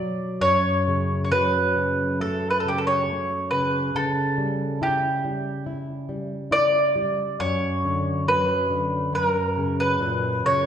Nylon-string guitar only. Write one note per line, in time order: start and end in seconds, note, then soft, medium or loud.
0.00 0.38 B2 medium
0.00 0.40 F#3 soft
0.41 3.91 F#2 medium
0.88 1.31 C#3 soft
1.32 1.75 F#3 medium
1.76 2.19 C#3 soft
2.20 2.63 A3 medium
2.65 3.07 C#3 soft
3.08 3.50 A3 medium
3.52 3.94 C#3 medium
3.95 7.36 C#3 medium
4.38 4.80 G3 soft
4.82 5.23 E4 medium
5.24 5.65 G3 soft
5.66 6.08 E4 medium
6.09 6.51 G3 soft
6.51 6.94 E4 medium
6.96 7.39 G3 medium
7.40 9.11 F#2 medium
7.85 8.27 D3 soft
8.28 8.70 F#3 medium
8.70 9.13 D3 soft
9.13 10.66 F#2 medium
9.57 10.00 C#3 medium
10.00 10.44 A#2 medium
10.45 10.66 C#3 medium